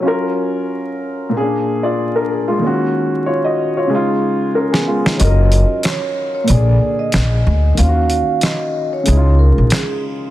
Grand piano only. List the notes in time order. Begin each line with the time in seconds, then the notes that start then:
0.00 F#3 C#4
0.05 F4 A#4
1.29 A#2 A#3
1.34 C#4 G#4
1.41 D4
1.83 F4 D5
2.16 D4 A#4
2.31 G#4
2.48 G#3 F4
2.59 D#3 A#3
2.64 C#4 F#4
3.26 F4 C#5
3.44 F#4 D#5
3.77 F4 C#5
3.87 C#3 G#3
3.92 D#4 F4
4.55 C#4 A#4
4.72 B3 G#4
4.87 G#3 F4
5.17 F#3 C#4
5.22 F4 A#4
6.44 A#2 A#3
6.49 D3 G#4
7.74 D#3 A#3
7.80 C#4 F4
7.89 F#4
9.03 C#3 G#3
9.08 D#4 E4
9.17 F4